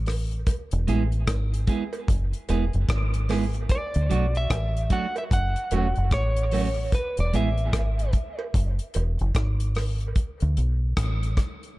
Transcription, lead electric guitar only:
3.71 4.38 D5 loud
4.37 4.92 E5 loud
4.93 5.17 F#5 loud
5.18 5.23 E5 medium
5.33 6.15 F#5 loud
6.14 6.94 C#5 loud
6.95 7.17 B4 medium
7.20 7.35 D5 medium
7.36 8.11 E5 medium

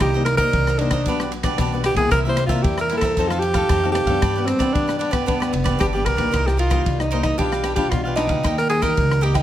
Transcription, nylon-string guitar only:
0.02 0.52 C3 medium
0.15 0.37 G3 medium
0.15 0.37 A#3 medium
0.15 0.37 D#4 medium
0.39 0.75 G3 medium
0.39 0.75 A#3 medium
0.39 0.75 D#4 medium
0.54 1.04 G2 medium
0.80 0.95 G3 medium
0.80 0.96 A#3 medium
0.80 0.96 D#4 medium
1.07 1.57 B2 medium
1.07 1.31 G3 medium
1.07 1.32 B3 medium
1.07 1.32 D4 medium
1.44 1.67 G3 medium
1.44 1.67 B3 medium
1.44 1.68 D4 medium
1.60 2.09 B2 medium
1.73 1.95 G3 medium
1.73 1.95 B3 medium
1.73 1.95 D4 medium
1.98 2.20 G3 medium
1.98 2.20 A#3 medium
1.98 2.21 E4 medium
2.13 2.62 C3 medium
2.26 2.48 G3 medium
2.26 2.48 A#3 medium
2.26 2.49 E4 medium
2.50 2.86 G3 medium
2.50 2.87 A#3 medium
2.50 2.87 E4 medium
2.67 3.16 G2 medium
2.91 3.13 G3 medium
2.91 3.14 A#3 medium
2.91 3.14 E4 medium
3.19 3.68 F3 medium
3.19 3.43 C4 medium
3.19 3.43 D#4 medium
3.19 3.43 A4 medium
3.56 3.78 C4 medium
3.56 3.79 D#4 medium
3.56 3.79 A4 medium
3.71 4.21 C3 medium
3.85 4.06 C4 medium
3.85 4.06 D#4 medium
3.85 4.06 A4 medium
4.08 4.31 G3 medium
4.08 4.31 B3 medium
4.08 4.31 D4 medium
4.23 4.73 G2 medium
4.37 4.59 G3 medium
4.37 4.59 B3 medium
4.37 4.59 D4 medium
4.60 4.97 G3 medium
4.60 4.97 B3 medium
4.60 4.97 D4 medium
4.76 5.26 D3 medium
5.01 5.17 G3 medium
5.01 5.17 B3 medium
5.01 5.17 D4 medium
5.28 5.78 G2 medium
5.28 5.53 G3 medium
5.28 5.53 B3 medium
5.28 5.53 D4 medium
5.66 5.89 G3 medium
5.66 5.89 B3 medium
5.66 5.89 D4 medium
5.81 6.31 D3 medium
5.96 6.17 G3 medium
5.96 6.17 B3 medium
5.96 6.18 D4 medium
6.19 6.42 G3 medium
6.19 6.42 A#3 medium
6.19 6.42 D#4 medium
6.34 6.84 C3 medium
6.72 7.08 G3 medium
6.72 7.08 A#3 medium
6.72 7.08 D#4 medium
6.88 7.37 G2 medium
7.13 7.35 G3 medium
7.13 7.35 A#3 soft
7.13 7.35 D#4 medium
7.40 7.90 B2 medium
7.40 7.75 G3 soft
7.40 7.75 D4 medium
7.40 7.76 F4 medium
7.78 8.14 G3 medium
7.78 8.14 D4 medium
7.78 8.14 F4 medium
7.92 8.42 B2 medium
8.17 8.40 G3 soft
8.17 8.40 D4 medium
8.17 8.40 F4 medium
8.44 8.95 D#3 medium
8.44 8.67 G3 medium
8.44 8.67 A#3 soft
8.44 8.67 D#4 medium
8.70 8.80 G3 medium
8.70 8.80 A#3 medium
8.70 8.80 D#4 medium
8.82 9.19 G3 medium
8.82 9.19 A#3 medium
8.82 9.19 D#4 medium
8.97 9.43 A#2 medium
9.23 9.41 G3 medium
9.23 9.41 A#3 medium
9.23 9.41 D#4 medium

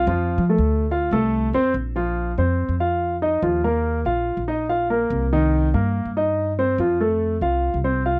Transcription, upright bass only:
0.07 0.37 F2 medium
0.38 0.58 F3 medium
0.58 1.09 D2 medium
1.11 1.52 C2 medium
1.53 1.74 F2 medium
1.74 2.35 A#1 medium
2.38 2.68 F2 medium
2.69 3.39 F2 medium
3.42 4.03 D#2 medium
4.05 4.36 A#1 medium
4.37 5.07 A#1 medium
5.10 5.71 C2 loud
5.74 6.04 G2 medium
6.05 6.75 G2 medium
6.78 7.38 F2 medium
7.41 7.72 C2 medium
7.74 8.20 C2 medium

